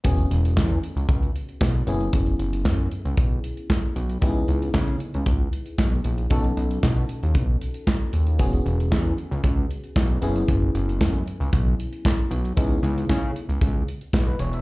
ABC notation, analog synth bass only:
X:1
M:4/4
L:1/16
Q:1/4=115
K:E
V:1 name="Analog synth bass" clef=bass
E,,,2 E,,,2 E,,2 z C,, C,,2 z2 B,,,2 F,,,2 | F,,,2 F,,,2 F,,2 z C,, B,,,2 z4 B,,,2 | C,,2 C,,2 C,2 z C,, C,,2 z2 B,,,2 ^A,,,2 | B,,,2 B,,,2 B,,2 z D,, B,,,2 z4 D,,2 |
E,,,2 E,,,2 E,,2 z C,, C,,2 z2 B,,,2 F,,,2 | F,,,2 F,,,2 F,,2 z C,, B,,,2 z4 B,,,2 | C,,2 C,,2 C,2 z C,, C,,2 z2 B,,,2 E,,,2 |]